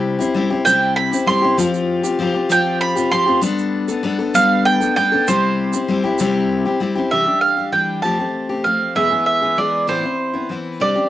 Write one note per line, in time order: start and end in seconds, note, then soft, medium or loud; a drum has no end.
0.00 0.19 C3 medium
0.00 0.20 G3 medium
0.00 0.20 C4 medium
0.00 0.19 E4 medium
0.00 0.17 G4 medium
0.19 0.34 C4 soft
0.19 0.35 E4 medium
0.19 0.34 G4 soft
0.19 shaker medium
0.34 0.50 G3 medium
0.34 0.51 C4 medium
0.34 0.50 E4 medium
0.34 0.49 G4 medium
0.50 0.65 C4 soft
0.50 0.66 E4 soft
0.50 0.66 G4 soft
0.65 1.12 C3 medium
0.65 1.12 G3 medium
0.65 1.12 C4 medium
0.65 1.11 E4 medium
0.65 1.10 G4 medium
0.65 0.96 G5 medium
0.65 shaker medium
0.96 1.27 B5 medium
1.11 1.26 C4 soft
1.11 1.27 E4 soft
1.11 1.27 G4 soft
1.11 shaker medium
1.26 1.42 G3 medium
1.26 1.43 C4 medium
1.26 1.42 E4 medium
1.26 1.40 G4 medium
1.26 1.56 C6 medium
1.26 shaker soft
1.42 1.57 C4 soft
1.42 1.58 E4 medium
1.42 1.57 G4 medium
1.58 2.04 F3 medium
1.58 2.04 C4 medium
1.58 2.03 F4 medium
1.58 2.02 G4 medium
1.58 shaker loud
1.74 shaker soft
2.03 2.19 C4 soft
2.03 2.20 F4 medium
2.03 2.19 G4 medium
2.03 shaker medium
2.19 2.34 F3 medium
2.19 2.35 C4 medium
2.19 2.34 F4 medium
2.19 2.32 G4 medium
2.34 2.49 C4 soft
2.34 2.49 F4 soft
2.34 2.50 G4 soft
2.49 2.96 F3 medium
2.49 2.96 C4 medium
2.49 2.96 F4 medium
2.49 2.94 G4 medium
2.49 2.80 G5 medium
2.49 shaker medium
2.81 3.09 B5 medium
2.95 3.11 C4 soft
2.95 3.12 F4 soft
2.95 3.11 G4 medium
2.95 shaker medium
3.11 3.27 F3 medium
3.11 3.27 C4 medium
3.11 3.27 F4 medium
3.11 3.25 G4 medium
3.11 3.40 C6 medium
3.11 shaker soft
3.26 3.42 C4 soft
3.26 3.42 F4 medium
3.26 3.42 G4 medium
3.42 3.88 G3 medium
3.42 3.88 B3 medium
3.42 3.88 D4 medium
3.42 3.87 A4 medium
3.42 shaker medium
3.58 shaker soft
3.88 4.03 B3 soft
3.88 4.04 D4 soft
3.88 4.04 A4 medium
3.88 shaker medium
4.03 4.19 G3 medium
4.03 4.19 B3 medium
4.03 4.19 D4 medium
4.03 4.17 A4 medium
4.19 4.34 B3 soft
4.19 4.35 D4 soft
4.19 4.34 A4 medium
4.34 4.80 G3 medium
4.34 4.81 B3 medium
4.34 4.81 D4 medium
4.34 4.79 A4 medium
4.34 4.65 F5 medium
4.34 shaker medium
4.65 4.94 G5 loud
4.80 4.96 B3 soft
4.80 4.97 D4 soft
4.80 4.96 A4 medium
4.80 shaker medium
4.96 5.12 G3 medium
4.96 5.12 B3 medium
4.96 5.12 D4 medium
4.96 5.11 A4 medium
4.96 5.28 G5 medium
4.96 shaker soft
5.12 5.28 B3 soft
5.12 5.28 D4 soft
5.12 5.27 A4 medium
5.28 5.73 C3 medium
5.28 5.74 G3 medium
5.28 5.74 C4 medium
5.28 5.74 E4 medium
5.28 5.72 G4 medium
5.28 6.77 C5 medium
5.28 shaker medium
5.73 5.88 C4 soft
5.73 5.89 E4 soft
5.73 5.88 G4 soft
5.73 shaker medium
5.88 6.04 G3 medium
5.88 6.04 C4 medium
5.88 6.04 E4 medium
5.88 6.02 G4 medium
6.04 6.20 C4 soft
6.04 6.20 E4 soft
6.04 6.19 G4 medium
6.18 6.65 C3 medium
6.18 6.66 G3 medium
6.18 6.66 C4 medium
6.18 6.65 E4 loud
6.18 6.64 G4 medium
6.18 shaker medium
6.65 6.80 C4 soft
6.65 6.81 E4 medium
6.65 6.81 G4 medium
6.80 6.96 G3 medium
6.80 6.96 C4 medium
6.80 6.96 E4 medium
6.80 6.94 G4 medium
6.95 7.12 C4 medium
6.95 7.12 E4 soft
6.95 7.11 G4 medium
7.11 7.27 C3 medium
7.11 7.27 E3 medium
7.11 7.27 G3 medium
7.11 7.27 D4 medium
7.11 7.25 G4 medium
7.11 7.41 E5 medium
7.26 7.59 G3 soft
7.26 7.57 D4 soft
7.26 7.56 G4 soft
7.41 7.70 F5 medium
7.57 7.72 G3 soft
7.57 7.73 D4 soft
7.57 7.73 G4 soft
7.72 8.03 E3 soft
7.72 8.04 G3 soft
7.72 8.04 D4 soft
7.72 8.04 G4 medium
7.72 8.01 G5 medium
8.02 8.19 F3 medium
8.02 8.19 A3 medium
8.02 8.19 C4 medium
8.02 8.18 G4 medium
8.02 8.64 A5 medium
8.19 8.51 A3 soft
8.19 8.50 C4 soft
8.19 8.48 G4 soft
8.49 8.64 A3 soft
8.49 8.65 C4 soft
8.49 8.65 G4 soft
8.64 8.96 F3 soft
8.64 8.96 A3 soft
8.64 8.96 C4 soft
8.64 8.97 G4 soft
8.64 8.93 F5 medium
8.95 9.11 E2 medium
8.95 9.11 B2 medium
8.95 9.11 E3 medium
8.95 9.11 G#3 medium
8.95 9.10 B3 medium
8.95 9.09 G#4 medium
8.95 9.25 E5 medium
9.10 9.43 E3 soft
9.10 9.42 G#3 soft
9.10 9.41 B3 soft
9.10 9.40 G#4 soft
9.26 9.58 E5 medium
9.42 9.55 E3 soft
9.42 9.57 G#3 soft
9.42 9.58 B3 soft
9.42 9.57 G#4 soft
9.57 9.86 E3 soft
9.57 9.88 G#3 soft
9.57 9.88 B3 soft
9.57 9.89 G#4 soft
9.57 9.86 D5 medium
9.87 10.03 A2 medium
9.87 10.03 E3 medium
9.87 10.04 B3 medium
9.87 10.04 C4 medium
9.87 10.02 E4 medium
9.87 10.54 C5 medium
10.03 10.35 C4 soft
10.03 10.32 E4 soft
10.33 10.50 B3 soft
10.33 10.49 C4 soft
10.33 10.50 E4 soft
10.49 10.80 E3 soft
10.49 10.81 B3 soft
10.49 10.80 C4 soft
10.49 10.81 E4 soft
10.80 10.96 C3 medium
10.80 10.96 G3 medium
10.80 10.96 C4 medium
10.80 10.96 D4 medium
10.80 10.94 G4 medium
10.80 11.09 D5 medium
10.95 11.09 C4 soft
10.95 11.09 D4 soft
10.95 11.09 G4 soft